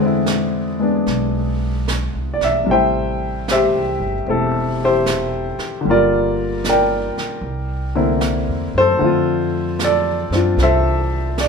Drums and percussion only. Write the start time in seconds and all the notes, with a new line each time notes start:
0.26 snare, hi-hat pedal
1.07 brush sweep, snare
1.88 snare, hi-hat pedal
2.41 snare
2.68 brush sweep
3.48 snare, hi-hat pedal
4.27 brush sweep
5.06 snare, hi-hat pedal
5.59 snare
5.85 brush sweep
6.64 snare, hi-hat pedal
7.18 snare
7.43 brush sweep
8.21 snare, hi-hat pedal
9.00 brush sweep
9.79 snare, hi-hat pedal
10.32 snare
10.58 brush sweep, snare
11.38 snare, hi-hat pedal